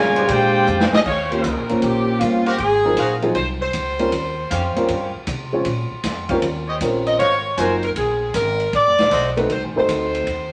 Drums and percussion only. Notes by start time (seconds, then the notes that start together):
0.16 ride
0.28 kick, ride
0.67 hi-hat pedal
0.80 snare
0.93 snare
1.06 kick, crash
1.32 ride
1.44 kick, hi-hat pedal, ride
1.69 ride
1.82 kick, ride
2.21 kick, hi-hat pedal, ride
2.46 ride
2.58 kick, ride
2.97 kick, hi-hat pedal, ride
3.22 ride
3.35 kick, ride
3.73 kick, hi-hat pedal, ride
3.99 ride
4.12 kick, ride
4.51 kick, hi-hat pedal, ride
4.76 ride
4.88 kick, ride
5.27 kick, hi-hat pedal, ride
5.65 kick, ride
6.03 kick, snare, hi-hat pedal, ride
6.29 kick, ride
6.42 kick, ride
6.80 kick, hi-hat pedal, ride
7.06 ride
7.19 kick, ride
7.57 kick, hi-hat pedal, ride
7.83 ride
7.96 kick, ride
8.34 kick, hi-hat pedal, ride
8.60 ride
8.73 kick, ride
8.98 snare, ride
9.11 kick, hi-hat pedal, ride
9.37 ride
9.50 kick, ride
9.89 kick, hi-hat pedal, ride
10.15 ride
10.27 kick, ride